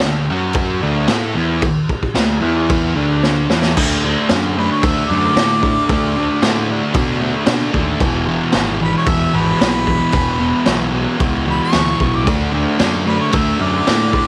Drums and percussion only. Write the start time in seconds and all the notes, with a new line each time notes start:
0.00 snare, crash
0.53 kick, crash
1.08 snare, crash
1.62 kick, crash
1.89 kick
2.03 kick
2.15 snare, crash
2.69 kick, crash
3.23 snare
3.50 snare
3.62 snare
3.77 kick, crash
4.29 snare, crash
4.83 kick, crash
5.37 snare, crash
5.63 kick
5.89 kick, crash
6.42 snare, crash
6.94 kick, crash
7.46 snare, crash
7.74 kick
8.00 kick, crash
8.52 snare, crash
9.06 kick, crash
9.61 snare, crash
9.87 kick
10.12 kick, crash
10.66 snare, crash
11.20 kick, crash
11.73 snare, crash
12.00 kick
12.27 kick, crash
12.79 snare, crash
13.32 kick, crash
13.87 snare, crash
14.13 kick